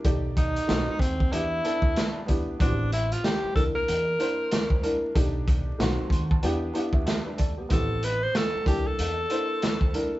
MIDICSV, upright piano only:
0, 0, Header, 1, 2, 480
1, 0, Start_track
1, 0, Key_signature, 0, "minor"
1, 0, Tempo, 638298
1, 35, Time_signature, 4, 2, 24, 8
1, 7667, End_track
2, 0, Start_track
2, 0, Title_t, "Upright piano"
2, 0, Program_c, 0, 0
2, 31, Note_on_c, 0, 57, 88
2, 35, Note_on_c, 0, 74, 70
2, 41, Note_on_c, 0, 63, 73
2, 41, Note_on_c, 0, 67, 92
2, 495, Note_off_c, 0, 57, 0
2, 501, Note_off_c, 0, 63, 0
2, 507, Note_on_c, 0, 57, 74
2, 511, Note_on_c, 0, 60, 68
2, 512, Note_on_c, 0, 63, 72
2, 515, Note_off_c, 0, 74, 0
2, 518, Note_off_c, 0, 67, 0
2, 518, Note_on_c, 0, 66, 79
2, 937, Note_off_c, 0, 57, 0
2, 940, Note_off_c, 0, 60, 0
2, 940, Note_off_c, 0, 63, 0
2, 943, Note_off_c, 0, 66, 0
2, 989, Note_on_c, 0, 59, 81
2, 995, Note_on_c, 0, 62, 74
2, 998, Note_on_c, 0, 64, 67
2, 1004, Note_on_c, 0, 67, 91
2, 1205, Note_off_c, 0, 59, 0
2, 1208, Note_off_c, 0, 62, 0
2, 1210, Note_off_c, 0, 64, 0
2, 1213, Note_off_c, 0, 67, 0
2, 1234, Note_on_c, 0, 59, 78
2, 1237, Note_on_c, 0, 62, 74
2, 1244, Note_on_c, 0, 64, 72
2, 1247, Note_on_c, 0, 69, 86
2, 1661, Note_off_c, 0, 59, 0
2, 1663, Note_off_c, 0, 62, 0
2, 1666, Note_off_c, 0, 64, 0
2, 1667, Note_off_c, 0, 69, 0
2, 1707, Note_on_c, 0, 59, 81
2, 1715, Note_on_c, 0, 62, 73
2, 1720, Note_on_c, 0, 64, 73
2, 1722, Note_on_c, 0, 67, 81
2, 1924, Note_off_c, 0, 59, 0
2, 1928, Note_off_c, 0, 62, 0
2, 1930, Note_off_c, 0, 64, 0
2, 1932, Note_off_c, 0, 67, 0
2, 1951, Note_on_c, 0, 59, 73
2, 1955, Note_on_c, 0, 60, 68
2, 1960, Note_on_c, 0, 64, 67
2, 1962, Note_on_c, 0, 66, 63
2, 2011, Note_on_c, 0, 67, 78
2, 2016, Note_off_c, 0, 66, 0
2, 2660, Note_off_c, 0, 64, 0
2, 2665, Note_on_c, 0, 58, 76
2, 2667, Note_on_c, 0, 62, 65
2, 2671, Note_on_c, 0, 64, 65
2, 2673, Note_off_c, 0, 59, 0
2, 2675, Note_off_c, 0, 60, 0
2, 2675, Note_on_c, 0, 70, 86
2, 2703, Note_off_c, 0, 67, 0
2, 3096, Note_off_c, 0, 58, 0
2, 3098, Note_off_c, 0, 62, 0
2, 3100, Note_off_c, 0, 64, 0
2, 3101, Note_off_c, 0, 70, 0
2, 3147, Note_on_c, 0, 58, 76
2, 3153, Note_on_c, 0, 62, 72
2, 3155, Note_on_c, 0, 64, 70
2, 3160, Note_on_c, 0, 72, 88
2, 3577, Note_off_c, 0, 58, 0
2, 3581, Note_off_c, 0, 62, 0
2, 3581, Note_off_c, 0, 64, 0
2, 3584, Note_off_c, 0, 72, 0
2, 3629, Note_on_c, 0, 58, 79
2, 3635, Note_on_c, 0, 62, 77
2, 3640, Note_on_c, 0, 64, 73
2, 3642, Note_on_c, 0, 70, 87
2, 3845, Note_off_c, 0, 58, 0
2, 3848, Note_off_c, 0, 62, 0
2, 3851, Note_off_c, 0, 64, 0
2, 3852, Note_off_c, 0, 70, 0
2, 3869, Note_on_c, 0, 57, 81
2, 3872, Note_on_c, 0, 62, 79
2, 3878, Note_on_c, 0, 63, 76
2, 3881, Note_on_c, 0, 67, 91
2, 4339, Note_off_c, 0, 57, 0
2, 4349, Note_off_c, 0, 63, 0
2, 4351, Note_on_c, 0, 57, 84
2, 4354, Note_off_c, 0, 62, 0
2, 4357, Note_on_c, 0, 60, 79
2, 4358, Note_off_c, 0, 67, 0
2, 4360, Note_on_c, 0, 63, 76
2, 4361, Note_on_c, 0, 66, 104
2, 4596, Note_on_c, 0, 84, 63
2, 4728, Note_off_c, 0, 84, 0
2, 4742, Note_on_c, 0, 81, 66
2, 4779, Note_off_c, 0, 57, 0
2, 4782, Note_off_c, 0, 60, 0
2, 4784, Note_off_c, 0, 63, 0
2, 4785, Note_off_c, 0, 66, 0
2, 4830, Note_off_c, 0, 81, 0
2, 4834, Note_on_c, 0, 59, 96
2, 4838, Note_on_c, 0, 62, 85
2, 4839, Note_on_c, 0, 79, 80
2, 4840, Note_on_c, 0, 64, 84
2, 4845, Note_on_c, 0, 67, 104
2, 5048, Note_off_c, 0, 59, 0
2, 5050, Note_off_c, 0, 62, 0
2, 5050, Note_off_c, 0, 64, 0
2, 5053, Note_off_c, 0, 67, 0
2, 5060, Note_off_c, 0, 79, 0
2, 5067, Note_on_c, 0, 59, 92
2, 5072, Note_on_c, 0, 62, 79
2, 5074, Note_on_c, 0, 77, 70
2, 5076, Note_on_c, 0, 64, 82
2, 5080, Note_on_c, 0, 67, 92
2, 5207, Note_off_c, 0, 77, 0
2, 5216, Note_on_c, 0, 76, 66
2, 5298, Note_off_c, 0, 67, 0
2, 5299, Note_off_c, 0, 76, 0
2, 5304, Note_off_c, 0, 59, 0
2, 5309, Note_on_c, 0, 67, 56
2, 5311, Note_on_c, 0, 76, 73
2, 5313, Note_off_c, 0, 62, 0
2, 5315, Note_off_c, 0, 64, 0
2, 5315, Note_on_c, 0, 59, 53
2, 5447, Note_off_c, 0, 67, 0
2, 5451, Note_off_c, 0, 59, 0
2, 5452, Note_on_c, 0, 71, 69
2, 5459, Note_on_c, 0, 62, 55
2, 5536, Note_off_c, 0, 76, 0
2, 5547, Note_off_c, 0, 71, 0
2, 5550, Note_off_c, 0, 62, 0
2, 5552, Note_on_c, 0, 69, 69
2, 5552, Note_on_c, 0, 74, 62
2, 5689, Note_off_c, 0, 69, 0
2, 5697, Note_on_c, 0, 67, 53
2, 5701, Note_on_c, 0, 59, 46
2, 5772, Note_off_c, 0, 59, 0
2, 5776, Note_off_c, 0, 74, 0
2, 5783, Note_on_c, 0, 59, 76
2, 5785, Note_off_c, 0, 67, 0
2, 5786, Note_on_c, 0, 60, 63
2, 5790, Note_on_c, 0, 64, 68
2, 5796, Note_on_c, 0, 67, 78
2, 6502, Note_off_c, 0, 64, 0
2, 6504, Note_on_c, 0, 58, 74
2, 6509, Note_off_c, 0, 59, 0
2, 6510, Note_off_c, 0, 60, 0
2, 6510, Note_on_c, 0, 62, 68
2, 6513, Note_on_c, 0, 64, 62
2, 6515, Note_off_c, 0, 67, 0
2, 6520, Note_on_c, 0, 69, 79
2, 6936, Note_off_c, 0, 58, 0
2, 6939, Note_off_c, 0, 62, 0
2, 6940, Note_off_c, 0, 64, 0
2, 6944, Note_off_c, 0, 69, 0
2, 6988, Note_on_c, 0, 58, 75
2, 6990, Note_on_c, 0, 62, 66
2, 6995, Note_on_c, 0, 64, 72
2, 7002, Note_on_c, 0, 72, 81
2, 7418, Note_off_c, 0, 58, 0
2, 7419, Note_off_c, 0, 62, 0
2, 7421, Note_off_c, 0, 64, 0
2, 7425, Note_off_c, 0, 72, 0
2, 7475, Note_on_c, 0, 58, 72
2, 7478, Note_on_c, 0, 62, 77
2, 7482, Note_on_c, 0, 64, 69
2, 7484, Note_on_c, 0, 70, 87
2, 7667, Note_off_c, 0, 58, 0
2, 7667, Note_off_c, 0, 62, 0
2, 7667, Note_off_c, 0, 64, 0
2, 7667, Note_off_c, 0, 70, 0
2, 7667, End_track
0, 0, End_of_file